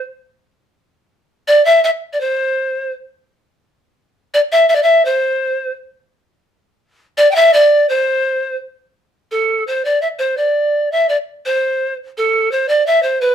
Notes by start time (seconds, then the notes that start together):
1.48 D5
1.65 E5
1.84 E5
2.13 D5
2.20 C5
4.34 D5
4.52 E5
4.69 E5
4.76 D5
4.83 E5
5.05 C5
7.18 D5
7.31 G5
7.36 E5
7.53 D5
7.89 C5
9.31 A4
9.67 C5
9.85 D5
10.02 E5
10.19 C5
10.37 D5
10.91 E5
11.09 D5
11.46 C5
12.18 A4
12.52 C5
12.69 D5
12.87 E5
13.03 C5
13.21 B4